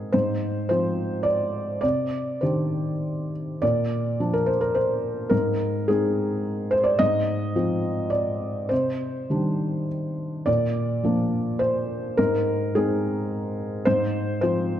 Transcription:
felt piano
Already playing: G#2 G#3 C4 D#4 G#4 A#4
0.12 G#2 C5
0.69 F3 C4 F4 C5
1.23 D5
1.81 C3 D5
2.41 D#3 D4 G4 C5
3.62 A#2 D5
4.20 F3 D4
4.33 A#4
4.46 C5
4.61 A#4
4.75 C5
5.29 G#2 A#4
5.88 G#3 C4 D#4 G#4
6.71 C5
6.84 D5
6.99 G#2 D#5
7.56 F3 C4 F4
8.10 D5
8.69 C3 C5
9.30 D#3 G3 D4
10.46 A#2 D5
11.03 F3 A#3 D4
11.59 C5
12.17 G#2 A#4
12.75 G#3 C4 D#4 G#4
13.85 G#2 C5
14.41 F3 C4 F4 C5

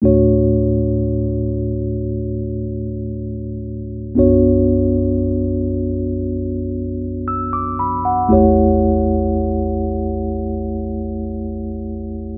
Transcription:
tine electric piano
0.02 D2 A2 A3 D4 F#4 C#5
4.15 B1 F#2 B3 D4 F#4 C#5
7.28 E6
7.53 D6
7.79 B5
8.05 F#5
8.29 A1 E2 A3 E4 G4 C#5

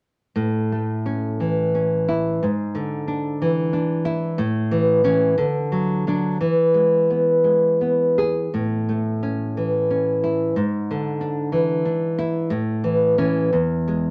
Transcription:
nylon-string guitar
0.36 A2
0.72 A3
1.06 C#4
1.40 E3
1.75 C#4
2.08 E4
2.43 G#2
2.75 D3
3.08 D4
3.42 E3
3.73 D4
4.05 E4
4.38 A2
4.71 E3
5.04 E3 C#4
5.38 D3
5.72 F#3
6.07 F#3 D4
6.41 E3
6.74 G#3
7.10 B3
7.44 G#3
7.81 B3
8.18 G#4
8.54 A2
8.89 A3
9.23 C#4
9.57 E3
9.90 C#4
10.24 E4
10.56 G#2
10.91 D3
11.21 D4
11.52 E3
11.85 D4
12.19 E4
12.50 A2
12.84 E3
13.18 E3 C#4
13.53 E2
13.88 G#3

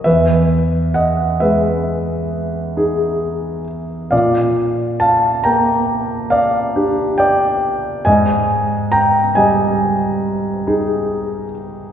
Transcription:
grand piano
0.04 E2 B4 E5
0.94 D#5 F#5
1.40 G#3 B4 E5
2.77 D#4 G#4
4.11 A#2 D5 F5
5.00 F5 A5
5.44 A#3 G5 A#5
6.30 D5 F5
6.76 D4 G4
7.18 D5 G5
8.05 G#2 D#5 G#5
8.92 G5 A#5
9.35 G3 D#5 G#5
10.67 D#4 G#4

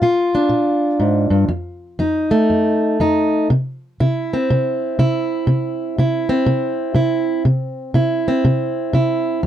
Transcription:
steel-string acoustic guitar
0.02 A#2 F4
0.35 D4
0.49 A#2
1.00 G#2
1.30 G2
1.49 F2
1.99 F2 D#4
2.31 A3
2.50 F2
3.00 F2 D#4
3.50 C3
4.00 C3 E4
4.33 C4
4.50 C3
4.99 C3 E4
5.47 C3
5.98 C3 E4
6.29 C4
6.46 C3
6.95 C3 E4
7.45 C3
7.94 C3 E4
8.28 C4
8.45 C3
8.93 C3 E4
9.43 F2

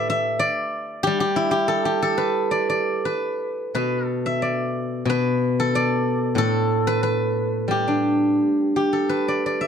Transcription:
guzheng
Already playing: A2 G4 A4 B4 D5
0.10 E5
0.39 D5
1.03 G3 G4
1.20 G4
1.36 E4
1.51 G4
1.68 A4
1.85 G4
2.02 A4
2.18 B4
2.51 D5
2.70 D5
3.05 B4
3.75 B2 B4
4.05 A4
4.26 E5
4.42 D5
5.05 B2
5.10 B4
5.60 A4
5.75 D5
6.35 A2 A4
6.87 B4
7.03 B4
7.68 G3 G4
7.88 D4
8.76 G4
8.93 A4
9.09 B4
9.28 D5
9.46 D5
9.61 E5

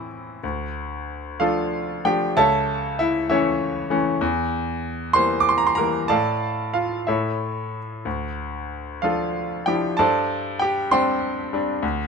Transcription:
grand piano
Already playing: A2 E3 C4 E4 C5 E5 A5
0.44 D2
1.40 F3 A3 D4 F4 A4 F5
2.05 F3 A3 D4 G4 G5
2.37 C#2 A4 C#5 E5 A5
2.99 E4 E5
3.30 E3 A3 C#4 E4 C#5 E5
3.90 E3 A3 C#4
4.21 E2
5.13 E3 G3 A#3 C5 C6
5.40 D6
5.49 C6
5.58 A#5
5.67 C6
5.75 E3 G3 A#4 A#5
5.79 A#3
6.08 A2 A4 D5 F5 A5
6.74 F4 F5
7.07 A2 E4 A4 C#5 E5
8.05 D2
9.02 F3 D4 F4 A4 F5
9.66 F3 D4 E4 G4 G5
9.97 G2 A4 C5 D5 A5
10.59 G4 G5
10.91 G3 C4 D4 C5 G5 C6
11.53 G3 C4 D4
11.83 D2

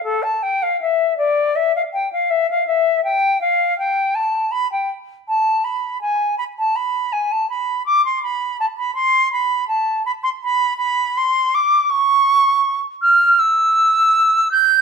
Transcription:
flute
0.03 A4
0.23 A5
0.42 G5
0.63 F5
0.81 E5
1.17 D5
1.55 E5
1.76 F5
1.93 G5
2.12 F5
2.30 E5
2.50 F5
2.67 E5
3.04 G5
3.41 F5
3.79 G5
4.15 A5
4.51 B5
4.72 G5
5.28 A5
5.64 B5
6.01 G#5
6.38 B5
6.58 A5
6.76 B5
7.12 G#5
7.31 A5
7.49 B5
7.86 D6
8.05 C6
8.23 B5
8.60 A5
8.77 B5
8.95 C6
9.32 B5
9.68 A5
10.05 B5
10.23 C6
10.44 B5
10.77 B5
11.17 C6
11.54 D6
11.90 C#6
13.02 F6
13.39 E6
14.51 G6

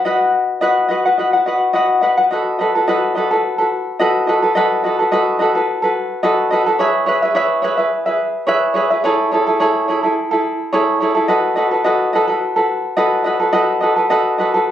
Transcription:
ukulele
0.05 F#4 B4 D#5 F#5
0.61 F#4 B4 D#5 F#5
0.88 F#4 B4 D#5 F#5
1.05 F#4 B4 F#5
1.18 F#4 B4 D#5 F#5
1.33 F#4 B4 F#5
1.46 F#4 B4 D#5 F#5
1.73 F#4 B4 D#5 F#5
2.01 F#4 B4 D#5 F#5
2.17 F#4 B4 F#5
2.31 F#4 A4 B4 D#5
2.59 F#4 A4 B4 D#5
2.75 F#4 A4 B4
2.88 F#4 A4 B4 D#5
3.15 F#4 A4 B4 D#5
3.31 F#4 A4 B4
3.58 F#4 A4 B4
3.99 F#4 A4 B4 D#5
4.27 F#4 A4 B4 D#5
4.42 F#4 A4 B4
4.55 F#4 A4 B4 D#5
4.84 F#4 A4 B4 D#5
4.99 F#4 A4 B4
5.12 F#4 A4 B4 D#5
5.39 F#4 A4 B4 D#5
5.55 F#4 A4 B4
5.82 F#4 A4 B4
6.23 F#4 A4 B4 D#5
6.51 F#4 A4 B4 D#5
6.66 F#4 A4 B4
6.79 G#4 B4 C#5 E5
7.06 G#4 B4 C#5 E5
7.22 G#4 B4 E5
7.35 G#4 B4 C#5 E5
7.62 G#4 B4 C#5 E5
7.77 G#4 B4 E5
8.06 G#4 B4 E5
8.47 G#4 B4 C#5 E5
8.74 G#4 B4 C#5 E5
8.90 G#4 B4 E5
9.04 E4 G#4 A4 C#5
9.32 E4 G#4 A4 C#5
9.47 E4 G#4 A4
9.60 E4 G#4 A4 C#5
9.88 E4 G#4 A4 C#5
10.03 E4 G#4 A4
10.31 E4 G#4 A4
10.73 E4 G#4 A4 C#5
11.00 E4 G#4 A4 C#5
11.15 E4 G#4 A4
11.28 F#4 A4 B4 D#5
11.56 F#4 A4 B4 D#5
11.71 F#4 A4 B4
11.84 F#4 A4 B4 D#5
12.13 F#4 A4 B4 D#5
12.27 F#4 A4 B4
12.56 F#4 A4 B4
12.97 F#4 A4 B4 D#5
13.24 F#4 A4 B4 D#5
13.40 F#4 A4 B4
13.53 F#4 A4 B4 D#5
13.81 F#4 A4 B4 D#5
13.96 F#4 A4 B4
14.10 F#4 A4 B4 D#5
14.38 F#4 A4 B4 D#5
14.54 F#4 A4 B4

